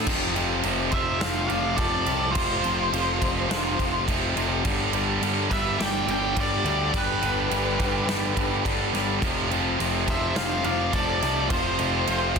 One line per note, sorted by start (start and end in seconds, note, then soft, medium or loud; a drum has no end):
0.06 0.60 F1 medium
0.06 0.34 F2 medium
0.06 0.34 C3 medium
0.06 0.35 F3 loud
0.06 kick loud
0.06 crash loud
0.06 crash medium
0.34 0.63 F2 medium
0.34 0.62 C3 medium
0.34 0.64 F3 medium
0.34 crash medium
0.63 0.90 F1 medium
0.63 0.91 F2 medium
0.63 0.92 C3 medium
0.63 0.93 F3 loud
0.63 crash medium
0.91 1.19 F1 medium
0.91 1.20 F2 medium
0.91 1.21 C3 medium
0.91 1.21 F3 medium
0.91 1.19 C5 medium
0.91 1.22 E5 medium
0.91 kick medium
0.91 crash medium
1.20 1.48 F1 medium
1.20 1.48 F2 medium
1.20 1.48 C3 loud
1.20 1.49 F3 medium
1.20 1.48 C5 medium
1.20 1.48 F5 loud
1.20 snare loud
1.20 crash medium
1.46 1.76 F2 medium
1.46 1.76 C3 medium
1.46 1.74 D5 medium
1.46 1.76 F5 loud
1.46 crash medium
1.50 1.76 F1 medium
1.50 1.78 F3 medium
1.75 2.05 F1 medium
1.75 2.04 F2 medium
1.75 2.06 C3 medium
1.75 2.30 A4 medium
1.75 2.32 D5 medium
1.75 kick medium
1.75 crash medium
1.79 2.06 F3 loud
2.05 2.33 C2 loud
2.05 2.33 F2 medium
2.05 2.35 C3 medium
2.05 2.35 F3 medium
2.05 crash medium
2.32 2.62 F1 loud
2.32 2.62 F2 medium
2.32 4.01 F4 medium
2.32 4.02 C5 medium
2.32 kick loud
2.32 crash medium
2.36 2.63 C3 loud
2.36 2.64 F3 loud
2.63 2.90 F1 medium
2.63 2.92 F2 medium
2.63 2.93 C3 medium
2.63 2.93 F3 loud
2.63 crash medium
2.92 3.19 F1 medium
2.92 3.19 F2 medium
2.92 3.20 C3 loud
2.92 3.20 F3 loud
2.92 crash medium
3.20 3.48 F1 medium
3.20 3.47 F2 medium
3.20 3.48 C3 medium
3.20 3.49 F3 medium
3.20 kick medium
3.20 crash medium
3.48 3.76 F1 medium
3.48 3.77 F2 loud
3.48 3.77 C3 medium
3.48 3.78 F3 loud
3.48 snare loud
3.48 crash medium
3.78 4.05 F1 medium
3.78 4.06 F2 medium
3.78 4.07 C3 medium
3.78 4.07 F3 medium
3.78 kick medium
3.78 crash medium
4.07 4.34 F1 medium
4.07 4.35 F2 medium
4.07 4.36 C3 medium
4.07 4.36 F3 loud
4.07 kick medium
4.07 crash medium
4.36 4.62 F1 medium
4.36 4.63 F2 medium
4.36 4.63 C3 medium
4.36 4.64 F3 medium
4.36 crash medium
4.64 5.18 G1 loud
4.64 4.92 G2 loud
4.64 4.91 D3 loud
4.64 4.93 G3 loud
4.64 kick loud
4.64 crash medium
4.92 5.21 G2 medium
4.92 5.21 D3 medium
4.92 5.23 G3 loud
4.92 crash medium
5.21 5.48 G1 medium
5.21 5.49 G2 medium
5.21 5.49 D3 medium
5.21 5.50 G3 loud
5.21 crash medium
5.49 5.77 G1 medium
5.49 5.76 G2 medium
5.49 5.78 D3 medium
5.49 5.77 G3 medium
5.49 5.77 B4 medium
5.49 5.81 E5 loud
5.49 kick loud
5.49 crash medium
5.78 6.06 G1 medium
5.78 6.05 G2 medium
5.78 6.06 D3 loud
5.78 6.06 G3 loud
5.78 6.06 D5 loud
5.78 snare loud
5.78 crash medium
5.82 6.10 G5 loud
6.06 6.34 G1 loud
6.06 6.34 G2 medium
6.06 6.34 D3 medium
6.06 6.35 G3 medium
6.06 6.35 D5 medium
6.06 crash medium
6.12 6.37 G5 loud
6.35 6.63 G1 loud
6.35 6.63 G2 medium
6.35 6.63 D3 medium
6.35 6.64 G3 loud
6.35 kick medium
6.35 crash medium
6.39 6.91 G4 medium
6.39 6.97 D5 medium
6.64 6.91 D2 loud
6.64 6.92 G2 medium
6.64 6.92 D3 medium
6.64 6.93 G3 medium
6.64 crash medium
6.93 7.20 G2 medium
6.93 7.20 D3 loud
6.93 7.21 G3 loud
6.93 kick loud
6.93 crash medium
6.97 8.63 G4 medium
6.97 8.63 B4 medium
7.21 7.48 G1 medium
7.21 7.48 G2 medium
7.21 7.49 D3 medium
7.21 7.50 G3 loud
7.21 crash medium
7.49 7.77 G1 medium
7.49 7.77 G2 medium
7.49 7.78 D3 loud
7.49 7.78 G3 medium
7.49 crash medium
7.78 8.06 G1 medium
7.78 8.06 G2 medium
7.78 8.07 D3 medium
7.78 8.08 G3 medium
7.78 kick medium
7.78 crash medium
8.07 8.34 G1 medium
8.07 8.34 G2 medium
8.07 8.35 D3 medium
8.07 8.36 G3 loud
8.07 snare loud
8.07 crash medium
8.35 8.63 G1 medium
8.35 8.63 G2 medium
8.35 8.64 D3 medium
8.35 8.64 G3 medium
8.35 kick medium
8.35 crash medium
8.64 8.91 G1 medium
8.64 8.92 G2 medium
8.64 8.93 D3 medium
8.64 8.93 G3 loud
8.64 kick medium
8.64 crash medium
8.93 9.20 G1 medium
8.93 9.20 G2 medium
8.93 9.21 D3 medium
8.93 9.21 G3 medium
8.93 snare soft
8.93 crash medium
9.20 9.75 F1 medium
9.20 9.48 F2 medium
9.20 9.49 C3 medium
9.20 9.50 F3 loud
9.20 kick loud
9.20 crash medium
9.48 9.78 F2 medium
9.48 9.78 C3 medium
9.48 9.79 F3 loud
9.48 crash medium
9.78 10.06 F1 medium
9.78 10.06 F2 loud
9.78 10.06 C3 loud
9.78 10.07 F3 loud
9.78 crash medium
10.06 10.34 F1 medium
10.06 10.34 F2 medium
10.06 10.35 C3 medium
10.06 10.35 F3 medium
10.06 10.35 C5 medium
10.06 10.37 E5 medium
10.06 kick medium
10.06 crash medium
10.35 10.63 F1 medium
10.35 10.62 F2 loud
10.35 10.63 C3 medium
10.35 10.64 F3 medium
10.35 10.63 C5 loud
10.35 10.65 F5 loud
10.35 snare loud
10.35 crash medium
10.63 10.91 F1 medium
10.63 10.92 F2 medium
10.63 10.93 C3 medium
10.63 10.94 F3 medium
10.63 10.92 D5 medium
10.63 10.95 F5 loud
10.63 crash medium
10.93 11.20 F1 medium
10.93 11.19 F2 medium
10.93 11.20 C3 loud
10.93 11.21 F3 medium
10.93 11.47 A4 medium
10.93 11.50 D5 medium
10.93 kick medium
10.93 crash medium
11.20 11.49 C2 medium
11.20 11.49 F2 medium
11.20 11.50 C3 medium
11.20 11.50 F3 medium
11.20 snare soft
11.20 crash medium
11.49 11.77 F1 medium
11.49 11.77 F2 medium
11.49 11.78 C3 loud
11.49 11.79 F3 loud
11.49 12.39 F4 medium
11.49 12.39 C5 medium
11.49 kick loud
11.49 crash medium
11.78 12.06 F1 medium
11.78 12.05 F2 medium
11.78 12.06 C3 loud
11.78 12.07 F3 medium
11.78 crash medium
12.06 12.34 F1 medium
12.06 12.34 F2 loud
12.06 12.35 C3 loud
12.06 12.36 F3 loud
12.06 crash medium
12.35 12.39 F1 medium
12.35 12.39 F2 medium
12.35 kick loud
12.35 crash medium